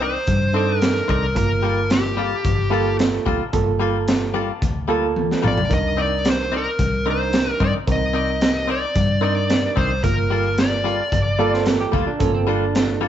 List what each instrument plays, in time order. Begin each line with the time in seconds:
Already playing: fingered electric bass C2, reed electric piano D4 D#4 A#4
0.01 clean electric guitar C4 D#4 A#4 D5, lead electric guitar C5
0.27 fingered electric bass G2, kick, closed hi-hat
0.53 clean electric guitar C4 D#4 A#4 D5, reed electric piano D4 D#4 A4
0.80 lead electric guitar A#4, snare, closed hi-hat
1.08 fingered electric bass C2, clean electric guitar C4 D#4 A#4 D5, lead electric guitar A#4, kick
1.35 fingered electric bass G1, reed electric piano A#3 F4 A#4, lead electric guitar A#4, kick, closed hi-hat
1.63 clean electric guitar G3 A#3 F4 A4
1.90 lead electric guitar G4, snare, closed hi-hat
2.17 clean electric guitar G3 A#3 F4 A4
2.44 fingered electric bass G1, kick, closed hi-hat
2.70 clean electric guitar G3 A#3 F4 A4, reed electric piano A#3 F4 A4
2.99 snare, closed hi-hat
3.26 fingered electric bass D2, clean electric guitar G3 A#3 F4 A4, kick
3.53 fingered electric bass G1, reed electric piano A#3 F4 A4, kick, closed hi-hat
3.80 clean electric guitar G3 A#3 F4 A4
4.08 snare, closed hi-hat
4.34 clean electric guitar G3 A#3 F4 A4
4.62 fingered electric bass D2, kick, closed hi-hat
4.88 clean electric guitar G3 A#3 F4 A4, reed electric piano A#3 F4 A4
5.16 high tom
5.31 snare
5.43 fingered electric bass A#1, clean electric guitar G3 A#3 F4 A4, mid tom
5.48 lead electric guitar D5
5.58 floor tom
5.69 fingered electric bass C2, reed electric piano D4 D#4 A#4, kick, closed hi-hat
5.74 lead electric guitar D#5
5.97 clean electric guitar C4 D#4 A#4 D5
6.02 lead electric guitar D5
6.25 snare, closed hi-hat
6.30 lead electric guitar C5
6.52 clean electric guitar C4 D#4 A#4 D5
6.57 lead electric guitar A#4
6.79 fingered electric bass C2, kick, closed hi-hat
7.06 clean electric guitar C4 D#4 A#4 D5, reed electric piano D4 D#4 A#4
7.10 lead electric guitar C5
7.33 snare, closed hi-hat
7.52 lead electric guitar A#4
7.60 fingered electric bass G2, clean electric guitar C4 D#4 A#4 D5, lead electric guitar D5, kick
7.87 fingered electric bass C2, reed electric piano C4 D#4 A#4, kick, closed hi-hat
7.92 lead electric guitar D#5
8.13 clean electric guitar C4 D#4 A#4 D5
8.41 snare, closed hi-hat
8.67 clean electric guitar C4 D#4 A#4 D5, lead electric guitar D5
8.95 fingered electric bass G2, kick, closed hi-hat
9.21 clean electric guitar C4 D#4 A#4 D5, reed electric piano D4 D#4 A#4
9.50 snare, closed hi-hat
9.76 fingered electric bass C2, clean electric guitar C4 D#4 A#4 D5, lead electric guitar C5, kick
10.04 fingered electric bass G1, reed electric piano A#3 F4 A#4, lead electric guitar A#4, kick, closed hi-hat
10.30 clean electric guitar G3 A#3 F4 A4
10.58 lead electric guitar D5, snare, closed hi-hat
10.84 clean electric guitar G3 A#3 F4 A4
11.12 fingered electric bass G1, kick, closed hi-hat
11.39 clean electric guitar G3 A#3 F4 A4 D5, reed electric piano A#3 F4 A4
11.54 clean electric guitar C5, snare
11.66 clean electric guitar A#4, snare, closed hi-hat
11.81 clean electric guitar G4
11.92 fingered electric bass D2, clean electric guitar G3 A#3 F4 A4, kick
12.07 clean electric guitar D4
12.19 fingered electric bass G1, reed electric piano A#3 F4 A4, clean electric guitar C#4, kick, closed hi-hat
12.34 clean electric guitar C4
12.47 clean electric guitar G3 A#3 D4 F4 A4
12.75 snare, closed hi-hat
13.01 clean electric guitar G3 A#3 F4 A4